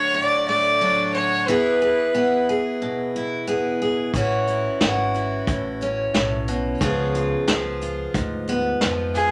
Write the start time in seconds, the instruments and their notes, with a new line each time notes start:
Already playing: steel-string acoustic guitar D3 F#3 A3 D4 F#4, fiddle C#5
0.14 steel-string acoustic guitar A2, fiddle D5
0.48 steel-string acoustic guitar A3, fiddle D5
0.81 steel-string acoustic guitar F#3 D4
1.14 steel-string acoustic guitar F#4, fiddle C#5
1.48 steel-string acoustic guitar E3 B3 E4 G#4, fiddle B4
1.82 steel-string acoustic guitar G#4
2.14 steel-string acoustic guitar B3 G#4
2.49 steel-string acoustic guitar G#4
2.82 steel-string acoustic guitar B2
3.16 steel-string acoustic guitar E4
3.47 steel-string acoustic guitar B3 G#4
3.82 steel-string acoustic guitar G#4
4.14 upright bass A1, steel-string acoustic guitar E3 C#4 E4, kick, closed hi-hat
4.18 steel-string acoustic guitar F#4
4.47 steel-string acoustic guitar E4, closed hi-hat
4.81 upright bass G#1, steel-string acoustic guitar E3 F#4, snare, closed hi-hat
5.14 steel-string acoustic guitar E4, closed hi-hat
5.47 upright bass A1, steel-string acoustic guitar A2, kick, closed hi-hat
5.81 steel-string acoustic guitar C#4, closed hi-hat
6.14 upright bass B1, steel-string acoustic guitar A2, snare, closed hi-hat
6.48 steel-string acoustic guitar B2, closed hi-hat
6.81 upright bass C#2, steel-string acoustic guitar C#3 F3 B3 F4 G#4, kick, closed hi-hat
7.14 steel-string acoustic guitar F4, closed hi-hat
7.48 upright bass C#2, steel-string acoustic guitar F3 G#4, snare, closed hi-hat
7.81 steel-string acoustic guitar F4, closed hi-hat
8.14 upright bass D2, steel-string acoustic guitar G#2, kick, closed hi-hat
8.47 steel-string acoustic guitar B3, closed hi-hat
8.81 upright bass F2, steel-string acoustic guitar F3 F4, snare, closed hi-hat
9.15 steel-string acoustic guitar F4, fiddle G#4, closed hi-hat